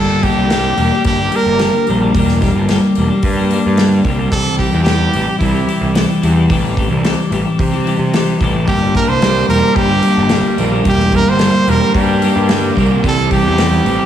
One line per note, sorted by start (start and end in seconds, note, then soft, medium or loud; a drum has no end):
0.00 0.30 G1 medium
0.00 0.49 G2 medium
0.00 0.49 D3 medium
0.00 0.23 G3 medium
0.00 0.24 A#3 medium
0.00 0.26 D4 medium
0.00 0.26 G4 medium
0.00 0.25 A4 medium
0.23 0.40 G3 medium
0.23 0.39 A#3 medium
0.23 0.38 D4 medium
0.23 1.05 G4 medium
0.23 0.36 G4 medium
0.23 kick medium
0.23 open hi-hat soft
0.37 0.71 C2 medium
0.37 0.51 G3 soft
0.37 0.51 A#3 medium
0.37 0.52 D4 medium
0.37 0.53 G4 soft
0.50 1.59 G2 medium
0.50 1.05 D3 medium
0.50 0.76 G3 medium
0.50 0.77 A#3 medium
0.50 0.79 D4 medium
0.50 0.80 G4 medium
0.50 snare loud
0.50 open hi-hat medium
0.77 0.89 E1 medium
0.77 0.94 G3 medium
0.77 0.92 A#3 medium
0.77 0.91 D4 medium
0.77 0.90 G4 medium
0.77 open hi-hat soft
0.91 1.20 G3 soft
0.91 1.18 A#3 medium
0.91 1.18 D4 medium
0.91 1.17 G4 medium
1.04 1.28 G1 medium
1.04 1.37 G4 medium
1.04 kick medium
1.04 open hi-hat medium
1.17 1.32 G3 soft
1.17 1.32 A#3 medium
1.17 1.33 D4 medium
1.17 1.36 G4 medium
1.32 1.61 G3 medium
1.32 1.60 A#3 medium
1.32 1.61 D4 medium
1.32 1.89 A#4 medium
1.32 open hi-hat soft
1.36 1.62 G4 medium
1.46 1.69 G1 medium
1.59 2.14 G2 medium
1.59 2.14 D3 medium
1.59 1.86 G3 medium
1.59 1.87 A#3 medium
1.59 1.88 D4 medium
1.59 1.90 G4 medium
1.59 snare medium
1.59 open hi-hat medium
1.87 2.11 A#1 medium
1.87 2.04 G3 medium
1.87 2.02 A#3 medium
1.87 2.02 D4 medium
1.87 2.01 G4 medium
1.87 open hi-hat soft
2.01 2.16 G3 medium
2.01 2.16 A#3 soft
2.01 2.16 D4 medium
2.01 2.18 G4 medium
2.15 2.49 E1 medium
2.15 2.67 G2 medium
2.15 2.68 D3 medium
2.15 2.41 G3 medium
2.15 2.41 A#3 medium
2.15 2.42 D4 loud
2.15 2.44 G4 medium
2.15 kick medium
2.15 open hi-hat medium
2.28 snare soft
2.41 2.58 G3 medium
2.41 2.57 A#3 medium
2.41 2.55 D4 medium
2.41 2.55 G4 medium
2.41 kick medium
2.41 snare soft
2.41 open hi-hat soft
2.54 2.77 G1 medium
2.54 2.69 A#3 medium
2.54 2.70 D4 soft
2.54 2.72 G4 medium
2.59 2.70 G3 soft
2.69 3.23 G2 medium
2.69 3.24 D3 medium
2.69 2.96 G3 medium
2.69 2.96 A#3 medium
2.69 2.98 D4 medium
2.69 3.00 G4 loud
2.69 snare medium
2.69 open hi-hat medium
2.95 3.08 E1 medium
2.95 3.13 G3 medium
2.95 3.11 A#3 medium
2.95 3.10 D4 medium
2.95 open hi-hat soft
3.00 3.10 G4 medium
3.10 3.40 G3 medium
3.10 3.38 A#3 medium
3.10 3.37 D4 medium
3.10 3.36 G4 medium
3.23 3.57 G2 medium
3.23 kick medium
3.23 open hi-hat medium
3.37 3.51 G3 soft
3.37 3.51 A#3 medium
3.37 3.53 D4 medium
3.37 3.54 G4 medium
3.51 3.80 G3 medium
3.51 3.79 A#3 medium
3.51 3.80 D4 medium
3.51 3.81 G4 medium
3.51 open hi-hat soft
3.66 3.99 G2 medium
3.77 4.31 G2 medium
3.77 4.31 D3 medium
3.77 4.04 G3 medium
3.77 4.05 A#3 medium
3.77 4.06 D4 medium
3.77 snare medium
3.77 open hi-hat soft
3.82 4.08 G4 medium
4.04 4.27 C2 medium
4.04 4.22 G3 medium
4.04 4.20 A#3 medium
4.04 4.19 D4 medium
4.04 4.18 G4 medium
4.04 kick medium
4.04 open hi-hat soft
4.19 4.33 G3 medium
4.19 4.32 A#3 medium
4.19 4.31 D4 medium
4.19 4.35 G4 medium
4.32 4.66 C2 medium
4.32 4.86 C3 medium
4.32 4.58 E3 medium
4.32 4.59 G3 medium
4.32 4.60 E4 medium
4.32 4.61 G4 medium
4.32 4.58 A4 loud
4.32 kick medium
4.32 open hi-hat medium
4.58 4.87 E3 medium
4.58 4.76 G3 medium
4.58 4.74 E4 medium
4.58 4.83 G4 medium
4.58 4.72 G4 medium
4.58 kick medium
4.58 open hi-hat soft
4.72 5.07 E2 medium
4.72 4.87 G3 soft
4.72 4.88 E4 medium
4.72 4.89 G4 medium
4.84 5.93 C3 medium
4.84 5.12 E3 medium
4.84 5.36 G4 medium
4.84 snare loud
4.84 open hi-hat medium
4.88 5.14 G3 medium
4.88 5.15 E4 medium
4.88 5.16 G4 medium
5.13 5.26 A1 medium
5.13 5.54 E3 medium
5.13 5.30 G3 medium
5.13 5.27 E4 medium
5.13 5.26 G4 medium
5.13 open hi-hat soft
5.27 5.57 G3 soft
5.27 5.54 E4 medium
5.27 5.53 G4 medium
5.39 5.64 C2 medium
5.39 5.90 E4 medium
5.39 kick medium
5.39 open hi-hat medium
5.54 5.67 G3 medium
5.54 5.67 E4 medium
5.54 5.69 G4 medium
5.66 5.93 E3 medium
5.66 5.95 G3 medium
5.66 5.95 E4 medium
5.66 5.96 G4 medium
5.66 open hi-hat soft
5.81 6.04 C2 medium
5.93 6.48 C3 medium
5.93 6.20 E3 medium
5.93 6.22 G3 medium
5.93 6.22 E4 medium
5.93 6.25 G4 medium
5.93 snare loud
5.93 open hi-hat medium
6.21 6.46 E2 medium
6.21 6.49 E3 medium
6.21 6.38 G3 medium
6.21 6.35 E4 medium
6.21 6.34 G4 medium
6.21 open hi-hat soft
6.35 6.51 G3 medium
6.35 6.51 E4 medium
6.35 6.52 G4 medium
6.49 6.84 A1 medium
6.49 7.02 C3 medium
6.49 6.74 E3 medium
6.49 6.77 G3 medium
6.49 6.77 E4 medium
6.49 6.79 G4 medium
6.49 kick medium
6.49 open hi-hat medium
6.76 7.03 E3 medium
6.76 6.92 G3 medium
6.76 6.90 E4 medium
6.76 6.89 G4 medium
6.76 kick medium
6.76 open hi-hat medium
6.89 7.13 C2 medium
6.89 7.05 G3 soft
6.89 7.05 E4 soft
6.89 7.07 G4 medium
7.03 7.58 C3 medium
7.03 7.29 E3 medium
7.03 7.32 G3 medium
7.03 7.32 E4 medium
7.03 7.33 G4 medium
7.03 snare medium
7.03 open hi-hat medium
7.30 7.43 A1 medium
7.30 7.72 E3 medium
7.30 7.48 G3 medium
7.30 7.45 E4 medium
7.30 7.44 G4 medium
7.30 open hi-hat soft
7.44 7.75 G3 medium
7.44 7.72 E4 soft
7.44 7.71 G4 medium
7.59 7.93 C3 medium
7.59 kick medium
7.59 open hi-hat medium
7.72 7.86 G3 medium
7.72 7.86 E4 medium
7.72 7.88 G4 medium
7.85 8.12 E3 medium
7.85 8.14 G3 medium
7.85 8.14 E4 medium
7.85 8.16 G4 medium
7.85 open hi-hat soft
7.99 8.33 C3 medium
8.13 8.66 C3 medium
8.13 8.39 E3 medium
8.13 8.41 G3 medium
8.13 8.41 E4 medium
8.13 8.43 G4 medium
8.13 snare loud
8.13 open hi-hat medium
8.40 8.63 A1 medium
8.40 8.66 E3 medium
8.40 8.56 G3 medium
8.40 8.53 E4 medium
8.40 8.52 G4 medium
8.40 kick medium
8.40 open hi-hat soft
8.53 8.68 G3 soft
8.53 8.66 E4 medium
8.53 8.69 G4 medium
8.67 9.02 G1 medium
8.67 9.21 G2 medium
8.67 9.21 D3 medium
8.67 8.94 G3 medium
8.67 8.95 A#3 medium
8.67 8.97 D4 medium
8.67 8.93 G4 medium
8.67 8.98 G4 medium
8.67 kick loud
8.67 open hi-hat medium
8.94 9.10 G3 medium
8.94 9.09 A#3 medium
8.94 9.08 D4 medium
8.94 9.07 G4 medium
8.94 9.10 A#4 medium
8.94 kick medium
8.94 open hi-hat soft
9.07 9.42 C2 medium
9.07 9.22 G3 soft
9.07 9.23 A#3 soft
9.07 9.24 D4 medium
9.07 9.24 G4 medium
9.07 9.48 C5 medium
9.21 10.30 G2 medium
9.21 9.77 D3 medium
9.21 9.49 G3 medium
9.21 9.50 A#3 medium
9.21 9.51 D4 loud
9.21 9.53 G4 medium
9.21 snare loud
9.21 open hi-hat medium
9.48 9.60 E1 medium
9.48 9.66 G3 medium
9.48 9.64 A#3 medium
9.48 9.63 D4 medium
9.48 9.77 A#4 medium
9.48 open hi-hat soft
9.53 9.62 G4 medium
9.63 9.93 G3 soft
9.63 9.92 A#3 medium
9.63 9.90 D4 medium
9.63 9.89 G4 medium
9.75 9.99 G1 medium
9.75 11.13 D4 medium
9.75 10.58 G4 medium
9.75 kick medium
9.75 open hi-hat soft
9.90 10.03 G3 soft
9.90 10.03 A#3 medium
9.90 10.05 D4 medium
9.90 10.07 G4 medium
10.03 10.32 G3 medium
10.03 10.31 A#3 medium
10.03 10.32 D4 medium
10.03 open hi-hat medium
10.07 10.33 G4 medium
10.17 10.40 G1 medium
10.29 10.83 G2 medium
10.29 10.85 D3 medium
10.29 10.57 G3 medium
10.29 10.58 A#3 medium
10.29 snare medium
10.29 open hi-hat medium
10.33 10.59 D4 medium
10.33 10.61 G4 medium
10.57 10.81 A#1 medium
10.57 10.74 G3 medium
10.57 10.72 A#3 medium
10.57 10.71 D4 medium
10.57 10.70 G4 medium
10.57 open hi-hat soft
10.71 10.86 G3 soft
10.71 10.85 A#3 medium
10.71 10.86 D4 medium
10.71 10.88 G4 medium
10.84 11.20 E1 medium
10.84 11.38 G2 medium
10.84 11.39 D3 medium
10.84 11.11 G3 medium
10.84 11.12 A#3 medium
10.84 11.13 D4 medium
10.84 kick loud
10.84 open hi-hat medium
10.88 11.15 G4 medium
10.88 11.17 G4 medium
11.00 snare soft
11.12 11.28 G3 medium
11.12 11.27 A#3 medium
11.12 11.26 D4 medium
11.12 11.26 G4 medium
11.12 11.31 A#4 medium
11.12 kick medium
11.12 open hi-hat soft
11.26 11.49 G1 medium
11.26 11.41 G3 medium
11.26 11.41 A#3 soft
11.26 11.41 D4 medium
11.26 11.42 G4 medium
11.26 11.71 C5 medium
11.39 11.94 G2 medium
11.39 11.95 D3 medium
11.39 11.66 G3 medium
11.39 11.66 A#3 medium
11.39 11.68 D4 medium
11.39 11.69 G4 medium
11.39 snare loud
11.39 open hi-hat medium
11.66 11.79 E1 medium
11.66 11.83 G3 medium
11.66 11.82 A#3 medium
11.66 11.80 D4 medium
11.66 11.80 G4 medium
11.66 11.95 A#4 medium
11.66 open hi-hat soft
11.80 12.12 G3 medium
11.80 12.10 A#3 medium
11.80 12.09 D4 medium
11.80 12.08 G4 medium
11.95 12.29 G2 medium
11.95 13.04 D4 medium
11.95 12.73 G4 medium
11.95 kick medium
11.95 open hi-hat medium
12.09 12.22 G3 medium
12.09 12.23 A#3 medium
12.09 12.23 D4 medium
12.09 12.25 G4 medium
12.22 12.51 G3 medium
12.22 12.51 A#3 medium
12.22 12.51 D4 medium
12.22 12.52 G4 medium
12.22 open hi-hat soft
12.36 12.70 G2 medium
12.49 13.02 G2 medium
12.49 13.02 D3 medium
12.49 12.76 G3 medium
12.49 12.77 A#3 medium
12.49 12.78 D4 medium
12.49 12.79 G4 medium
12.49 snare loud
12.49 open hi-hat medium
12.76 13.00 C2 medium
12.76 12.94 G3 medium
12.76 12.92 A#3 medium
12.76 12.91 D4 medium
12.76 12.90 G4 medium
12.76 kick medium
12.76 open hi-hat soft
12.90 13.04 G3 medium
12.90 13.04 A#3 medium
12.90 13.03 D4 medium
12.90 13.06 G4 medium
13.03 13.38 C2 medium
13.03 13.56 C3 medium
13.03 13.30 E3 medium
13.03 13.32 G3 medium
13.03 13.32 C4 loud
13.03 13.34 G4 medium
13.03 kick medium
13.03 open hi-hat medium
13.08 13.31 A4 medium
13.31 13.58 E3 medium
13.31 13.48 G3 medium
13.31 13.45 C4 medium
13.31 14.06 G4 medium
13.31 13.45 G4 medium
13.31 kick medium
13.31 open hi-hat soft
13.44 13.78 E2 medium
13.44 13.58 G3 soft
13.44 13.59 C4 soft
13.44 13.60 G4 medium
13.57 14.06 C3 medium
13.57 13.85 E3 medium
13.57 13.86 G3 medium
13.57 13.87 C4 medium
13.57 13.89 G4 medium
13.57 snare loud
13.57 open hi-hat medium
13.85 13.97 A1 medium
13.85 14.06 E3 medium
13.85 14.01 G3 medium
13.85 13.99 C4 medium
13.85 13.98 G4 medium
13.85 open hi-hat soft
13.99 14.06 G3 soft
13.99 14.06 C4 medium
13.99 14.06 G4 medium